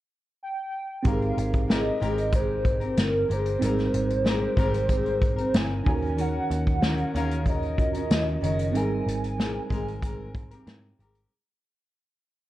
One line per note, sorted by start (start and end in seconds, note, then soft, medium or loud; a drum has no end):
0.43 1.09 G5 loud
1.03 1.31 G#1 medium
1.03 1.66 G#3 medium
1.03 3.57 C4 medium
1.03 1.68 C4 medium
1.03 3.57 D#4 medium
1.03 1.69 G4 medium
1.03 3.58 G4 medium
1.03 kick loud
1.03 closed hi-hat medium
1.07 1.70 A#4 medium
1.07 3.59 A#4 medium
1.07 1.73 F5 loud
1.22 closed hi-hat soft
1.37 1.89 G#1 medium
1.37 closed hi-hat medium
1.53 kick medium
1.53 closed hi-hat soft
1.67 1.99 G#3 medium
1.67 1.99 C4 medium
1.67 2.00 G4 medium
1.67 2.01 A#4 medium
1.67 2.37 D#5 loud
1.67 snare medium
1.67 closed hi-hat medium
2.00 2.94 G#1 medium
2.00 2.31 G#3 medium
2.00 2.32 C4 medium
2.00 2.33 G4 loud
2.00 2.34 A#4 medium
2.00 closed hi-hat medium
2.18 closed hi-hat soft
2.32 2.81 G#3 medium
2.32 2.82 C4 medium
2.32 2.80 G4 medium
2.32 2.79 A#4 medium
2.32 3.01 C5 medium
2.32 kick medium
2.32 closed hi-hat medium
2.65 kick medium
2.65 closed hi-hat medium
2.80 3.28 C4 soft
2.80 3.29 G4 soft
2.80 3.29 A#4 medium
2.80 closed hi-hat soft
2.97 3.23 G1 medium
2.97 3.31 A#4 medium
2.97 snare loud
2.97 closed hi-hat loud
3.28 3.55 G1 medium
3.28 3.59 G#3 medium
3.28 3.61 C4 medium
3.28 3.62 G4 medium
3.28 3.63 A#4 medium
3.28 closed hi-hat medium
3.33 5.58 C5 loud
3.45 closed hi-hat medium
3.59 3.87 G#1 medium
3.59 5.83 G3 medium
3.59 4.23 G#3 medium
3.59 5.81 C4 medium
3.59 4.24 C4 medium
3.59 5.82 D#4 medium
3.59 closed hi-hat medium
3.63 4.25 G4 medium
3.63 4.27 A#4 medium
3.63 5.84 A#4 medium
3.78 snare soft
3.78 closed hi-hat soft
3.94 4.45 G#1 medium
3.94 closed hi-hat medium
4.10 closed hi-hat soft
4.24 4.55 G#3 medium
4.24 4.56 C4 medium
4.24 4.57 G4 medium
4.24 4.58 A#4 medium
4.24 snare loud
4.24 closed hi-hat medium
4.56 5.50 G#1 medium
4.56 4.88 G#3 medium
4.56 4.89 C4 loud
4.56 4.90 G4 medium
4.56 4.91 A#4 loud
4.56 kick medium
4.56 closed hi-hat medium
4.74 closed hi-hat medium
4.89 5.38 G#3 medium
4.89 5.38 C4 medium
4.89 5.39 G4 medium
4.89 5.35 A#4 medium
4.89 kick medium
4.89 closed hi-hat medium
5.06 closed hi-hat soft
5.22 kick medium
5.22 closed hi-hat medium
5.36 5.86 C4 soft
5.36 5.85 A#4 medium
5.36 closed hi-hat soft
5.54 5.80 G1 medium
5.54 6.22 G#5 loud
5.54 snare loud
5.54 closed hi-hat medium
5.84 6.38 D#2 loud
5.84 6.15 D#3 medium
5.84 7.74 C#4 medium
5.84 6.17 C#4 medium
5.84 7.75 D#4 soft
5.84 7.76 F#4 medium
5.84 6.18 F#4 medium
5.84 kick loud
5.84 open hi-hat soft
5.88 5.94 A4 medium
5.88 6.19 A#4 medium
5.95 7.79 A#4 medium
6.02 closed hi-hat soft
6.17 6.81 D#3 medium
6.17 6.82 C#4 medium
6.17 6.83 F#4 medium
6.17 6.85 A#4 medium
6.17 7.18 F#5 loud
6.17 closed hi-hat medium
6.50 7.02 D#2 medium
6.50 closed hi-hat medium
6.67 kick medium
6.67 closed hi-hat soft
6.81 7.13 D#3 medium
6.81 7.14 C#4 medium
6.81 7.14 F#4 medium
6.81 snare medium
6.81 closed hi-hat medium
6.86 7.15 A#4 medium
6.98 closed hi-hat soft
7.14 8.07 D#2 medium
7.14 7.44 D#3 medium
7.14 7.46 C#4 medium
7.14 7.47 F#4 medium
7.14 7.48 A#4 medium
7.14 7.48 F5 loud
7.14 closed hi-hat medium
7.31 closed hi-hat medium
7.45 7.94 D#3 soft
7.45 7.95 C#4 medium
7.45 7.94 F#4 medium
7.45 8.78 D#5 loud
7.45 kick medium
7.45 closed hi-hat loud
7.50 7.92 A#4 medium
7.63 closed hi-hat soft
7.78 8.75 C#4 soft
7.78 8.75 F4 soft
7.78 8.75 F#4 soft
7.78 8.76 A#4 medium
7.78 kick medium
7.78 closed hi-hat medium
7.93 8.41 C#4 soft
7.93 8.42 F#4 soft
7.93 8.42 A#4 medium
7.93 closed hi-hat medium
8.11 8.37 D#2 medium
8.11 snare loud
8.11 closed hi-hat loud
8.41 8.75 F#1 medium
8.41 8.74 D#3 medium
8.41 8.74 C#4 medium
8.41 8.75 F#4 medium
8.41 8.75 A#4 medium
8.41 closed hi-hat medium
8.59 closed hi-hat medium
8.72 9.01 G#1 medium
8.72 11.28 G3 medium
8.72 9.38 G#3 medium
8.72 11.26 C4 medium
8.72 9.39 C4 medium
8.72 11.27 D#4 medium
8.72 closed hi-hat medium
8.77 9.41 A#4 medium
8.77 11.28 A#4 medium
8.77 10.68 G#5 loud
9.06 9.58 G#1 medium
9.06 closed hi-hat medium
9.24 closed hi-hat soft
9.38 9.68 G#3 medium
9.38 9.70 C4 medium
9.38 9.71 A#4 medium
9.38 snare loud
9.38 closed hi-hat medium
9.70 10.63 G#1 medium
9.70 10.01 G#3 medium
9.70 10.02 C4 medium
9.70 10.04 A#4 loud
9.70 kick medium
9.70 closed hi-hat medium
9.88 closed hi-hat soft
10.02 10.51 G#3 medium
10.02 10.51 C4 medium
10.02 10.50 A#4 medium
10.02 kick medium
10.02 closed hi-hat loud
10.35 kick medium
10.35 closed hi-hat medium
10.51 10.99 C4 soft
10.51 10.99 G4 medium
10.51 10.99 A#4 medium
10.51 closed hi-hat soft
10.67 10.93 G#2 medium
10.67 snare loud
10.67 closed hi-hat loud
10.98 11.25 G#1 medium
10.98 11.31 G#3 medium
10.98 11.32 C4 medium
10.98 11.32 G4 medium
10.98 11.33 A#4 medium
10.98 closed hi-hat medium
11.15 closed hi-hat medium